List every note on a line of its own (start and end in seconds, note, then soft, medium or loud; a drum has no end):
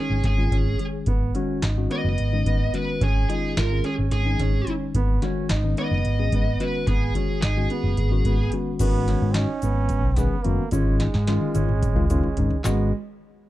0.00 0.17 D#3 medium
0.00 0.17 G#3 medium
0.00 0.17 C#4 medium
0.00 0.40 C#4 medium
0.00 0.17 D#4 medium
0.00 0.25 G#4 medium
0.10 0.22 G#1 medium
0.24 0.47 G#1 medium
0.24 0.84 G#4 medium
0.24 kick medium
0.24 snare soft
0.24 closed hi-hat medium
0.38 0.64 D#3 medium
0.38 0.63 G#3 medium
0.38 0.64 C#4 medium
0.38 0.64 F4 medium
0.52 0.75 G#1 medium
0.52 0.95 C#4 medium
0.52 kick medium
0.52 closed hi-hat medium
0.79 1.08 D#3 soft
0.79 1.08 G#3 soft
0.79 1.08 C#4 soft
0.79 1.08 G#4 medium
0.79 closed hi-hat medium
1.06 1.30 G#1 medium
1.06 1.29 B3 medium
1.06 kick medium
1.06 closed hi-hat medium
1.35 1.61 D#3 medium
1.35 1.61 G#3 medium
1.35 1.57 C#4 medium
1.35 1.61 C#4 medium
1.35 1.61 F#4 medium
1.35 closed hi-hat soft
1.62 1.86 G#1 medium
1.62 1.84 D#4 medium
1.62 snare medium
1.62 closed hi-hat medium
1.77 2.11 D#3 medium
1.77 2.11 G#3 medium
1.77 2.11 C#4 medium
1.77 2.11 F#4 medium
1.90 2.33 B3 medium
1.90 2.77 D#5 medium
1.90 closed hi-hat medium
2.05 2.16 F#1 medium
2.18 2.42 G#1 medium
2.18 closed hi-hat medium
2.33 2.58 D#3 medium
2.33 2.58 G#3 medium
2.33 2.58 C#4 medium
2.33 2.58 D#4 medium
2.46 2.69 G#1 medium
2.46 2.89 B3 medium
2.46 kick medium
2.46 closed hi-hat medium
2.73 3.01 D#3 medium
2.73 3.01 G#3 medium
2.73 3.01 C#4 medium
2.73 3.01 F#4 medium
2.73 3.03 B4 medium
2.73 closed hi-hat medium
3.01 3.24 G#1 medium
3.01 3.23 C#4 medium
3.01 3.28 G#4 medium
3.01 kick medium
3.01 closed hi-hat medium
3.29 3.54 D#3 medium
3.29 3.55 G#3 medium
3.29 3.55 C#4 medium
3.29 3.51 D#4 medium
3.29 3.55 F4 medium
3.29 3.58 G#4 medium
3.29 closed hi-hat medium
3.57 3.80 G#1 medium
3.57 3.79 F4 medium
3.57 3.85 A#4 medium
3.57 snare loud
3.57 closed hi-hat medium
3.71 4.04 D#3 medium
3.71 4.05 G#3 medium
3.71 4.05 C#4 medium
3.71 4.05 G#4 medium
3.84 4.27 C#4 medium
3.84 3.93 G#4 medium
3.84 closed hi-hat medium
3.99 4.10 G#1 medium
4.11 4.35 G#1 loud
4.11 4.70 G#4 medium
4.11 closed hi-hat medium
4.26 4.51 D#3 medium
4.26 4.51 G#3 medium
4.26 4.51 C#4 medium
4.26 4.51 D#4 medium
4.39 4.62 G#1 medium
4.39 4.83 C#4 medium
4.39 kick medium
4.39 snare soft
4.39 closed hi-hat medium
4.67 4.95 D#3 soft
4.67 4.95 G#3 soft
4.67 4.95 C#4 soft
4.67 4.95 D#4 medium
4.67 closed hi-hat medium
4.95 5.17 G#1 medium
4.95 5.17 B3 medium
4.95 kick medium
4.95 closed hi-hat medium
5.22 5.47 D#3 medium
5.22 5.47 G#3 medium
5.22 5.48 C#4 medium
5.22 5.44 C#4 medium
5.22 5.48 F#4 medium
5.22 snare soft
5.22 closed hi-hat medium
5.49 5.73 G#1 medium
5.49 5.72 D#4 medium
5.49 snare loud
5.49 closed hi-hat medium
5.64 5.97 D#3 medium
5.64 5.97 G#3 medium
5.64 5.98 C#4 medium
5.64 5.98 D#4 medium
5.77 6.21 B3 medium
5.77 6.63 D#5 medium
5.77 closed hi-hat medium
5.91 6.03 F#1 medium
6.05 6.28 G#1 medium
6.05 closed hi-hat medium
6.19 6.44 D#3 medium
6.19 6.44 G#3 medium
6.19 6.44 C#4 medium
6.19 6.44 G#4 medium
6.32 6.55 G#1 medium
6.32 6.76 B3 medium
6.32 kick medium
6.32 closed hi-hat medium
6.60 6.88 D#3 medium
6.60 6.88 G#3 medium
6.60 6.88 C#4 medium
6.60 6.88 F#4 medium
6.60 6.87 B4 medium
6.60 closed hi-hat medium
6.87 7.10 G#1 medium
6.87 7.10 B3 medium
6.87 7.41 G#4 medium
6.87 kick medium
6.87 closed hi-hat medium
7.15 7.40 D#3 medium
7.15 7.40 G#3 medium
7.15 7.41 C#4 medium
7.15 7.37 C#4 medium
7.15 7.41 F#4 medium
7.15 kick medium
7.15 closed hi-hat medium
7.42 7.66 G#1 medium
7.42 7.65 D#4 medium
7.42 8.49 G#4 medium
7.42 snare loud
7.42 closed hi-hat medium
7.56 7.90 D#3 medium
7.56 7.90 G#3 medium
7.56 7.90 C#4 medium
7.56 7.91 F#4 medium
7.70 8.14 B3 medium
7.70 closed hi-hat medium
7.84 7.95 F#1 medium
7.97 8.20 G#1 medium
7.97 kick medium
7.97 closed hi-hat medium
8.11 8.37 D#3 medium
8.11 8.37 G#3 medium
8.11 8.37 C#4 medium
8.11 8.37 F#4 medium
8.25 8.48 G#1 medium
8.25 8.69 B3 medium
8.25 kick medium
8.25 closed hi-hat medium
8.52 8.79 D#3 medium
8.52 8.79 G#3 medium
8.52 8.79 C#4 medium
8.52 8.80 F#4 medium
8.52 closed hi-hat medium
8.79 9.14 G#1 medium
8.79 9.47 D#3 medium
8.79 9.47 G#3 medium
8.79 9.36 B3 medium
8.79 9.02 B3 medium
8.79 9.48 C#4 medium
8.79 9.48 F#4 medium
8.79 kick medium
8.79 closed hi-hat medium
8.79 crash medium
8.79 shaker medium
9.08 9.30 C#4 medium
9.08 snare soft
9.08 closed hi-hat medium
9.22 9.45 G#2 medium
9.34 10.18 C#4 medium
9.34 9.57 D#4 medium
9.34 snare medium
9.34 closed hi-hat medium
9.62 10.05 G#1 medium
9.62 10.06 B3 medium
9.62 closed hi-hat medium
9.62 shaker soft
9.89 kick medium
9.89 closed hi-hat medium
9.89 shaker soft
10.05 10.27 B1 medium
10.16 10.35 D#3 medium
10.16 10.35 G#3 medium
10.16 10.46 B3 medium
10.16 10.61 B3 medium
10.16 10.35 C#4 medium
10.16 10.35 G#4 loud
10.16 kick medium
10.16 snare soft
10.16 closed hi-hat medium
10.16 shaker soft
10.44 10.57 F#1 medium
10.44 10.62 D#3 medium
10.44 10.62 G#3 medium
10.44 10.71 A#3 medium
10.44 10.62 C#4 medium
10.44 10.62 F#4 medium
10.44 closed hi-hat medium
10.71 11.06 G#1 medium
10.71 11.06 D#3 medium
10.71 11.06 G#3 medium
10.71 12.61 G#3 medium
10.71 11.06 C#4 medium
10.71 10.94 C#4 medium
10.71 11.06 F4 medium
10.71 kick medium
10.71 closed hi-hat medium
10.71 shaker medium
11.00 11.22 D#4 medium
11.00 snare medium
11.00 closed hi-hat medium
11.14 11.37 G#2 loud
11.14 snare medium
11.27 11.69 D#3 medium
11.27 11.70 G#3 medium
11.27 11.70 C#4 medium
11.27 11.49 F4 medium
11.27 11.70 F4 loud
11.27 snare medium
11.27 closed hi-hat medium
11.41 high tom medium
11.55 11.97 G#1 medium
11.55 11.98 C#4 medium
11.55 closed hi-hat medium
11.55 high tom medium
11.55 shaker soft
11.69 mid tom medium
11.82 kick loud
11.82 closed hi-hat medium
11.82 mid tom medium
11.82 shaker soft
11.96 12.19 C#2 medium
11.96 12.05 D#3 loud
11.96 12.05 G#3 medium
11.96 12.05 C#4 medium
11.96 12.05 F4 loud
11.96 mid tom medium
12.10 12.27 D#3 medium
12.10 12.27 G#3 medium
12.10 12.53 C#4 medium
12.10 12.27 C#4 medium
12.10 12.27 F4 loud
12.10 closed hi-hat medium
12.10 mid tom loud
12.10 shaker soft
12.23 floor tom medium
12.37 12.50 G#1 medium
12.37 12.55 D#3 medium
12.37 12.55 G#3 medium
12.37 12.55 C#4 medium
12.37 12.55 D#4 medium
12.37 closed hi-hat medium
12.37 floor tom loud
12.50 floor tom medium
12.64 12.91 G#1 medium
12.64 12.91 D#3 medium
12.64 12.91 G#3 medium
12.64 12.91 B3 medium
12.64 12.91 C#4 medium
12.64 12.91 F#4 medium
12.64 snare medium
12.64 clap medium
12.64 shaker medium